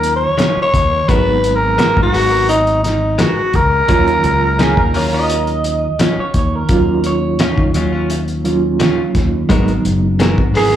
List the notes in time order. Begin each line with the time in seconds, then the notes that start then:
Already playing: D#2 F#3 A#3 C#4 F4 A#4
0.03 closed hi-hat
0.16 C#5
0.38 D#3 F#3 C#4 F4, snare, closed hi-hat
0.57 muted fingered electric bass stroke
0.62 C#5
0.74 D#2, kick, closed hi-hat
1.08 G#1 F#3 G#3 B3 D#4 F#4 A#4 B4, kick, closed hi-hat
1.44 closed hi-hat
1.56 A#4
1.78 G#3 B3 F#4 A#4, snare, closed hi-hat
1.97 G#2, kick
2.03 F#4
2.13 G#1 G#3 B3 F#4 A#4, open hi-hat
2.31 B3 F#4 A#4
2.49 D#4, closed hi-hat
2.67 closed hi-hat
2.84 D#4, snare, closed hi-hat
3.18 G#3 B3 F#4 A#4, snare, closed hi-hat
3.54 C#2 A#4, kick, closed hi-hat
3.88 D#2 D#3 F#3 A#3 C#4 F4, kick, closed hi-hat
4.07 closed hi-hat
4.24 C#2, closed hi-hat
4.59 D#3 F#3 C#4 F4 G#4, snare, closed hi-hat
4.77 D#2 A#4, kick
4.94 D#3 F#3 C#4 F4 C#5, open hi-hat
5.13 F#3 C#4 F4 D#5
5.30 closed hi-hat
5.47 closed hi-hat
5.64 closed hi-hat
5.99 D#3 F#3 C#4 F4, snare, closed hi-hat
6.18 C#5, muted fingered electric bass stroke
6.34 D#2 C#5, kick, closed hi-hat
6.55 A#4
6.69 D#2 F#3 A#3 C#4 F4, kick, closed hi-hat
7.04 C#5, closed hi-hat
7.39 D#3 F#3 C#4 F4, snare, closed hi-hat
7.58 D#3, kick
7.74 D#2 D#3 F#3 C#4 F4, closed hi-hat
7.93 F#3 C#4 F4
8.10 closed hi-hat
8.28 closed hi-hat
8.45 F#3 A#3 C#4 F4, closed hi-hat
8.80 D#3 F#3 C#4 F4, snare, closed hi-hat
9.15 D#2, kick, snare, closed hi-hat
9.49 G#1 F#3 G#3 B3 D#4 F#4 A#4, kick, closed hi-hat
9.68 closed hi-hat
9.85 F#1, closed hi-hat
10.20 G#3 B3 F#4 A#4, snare, closed hi-hat
10.38 G#1, kick
10.54 G#3 B3 F#4 G#4 A#4, snare, open hi-hat
10.72 A#4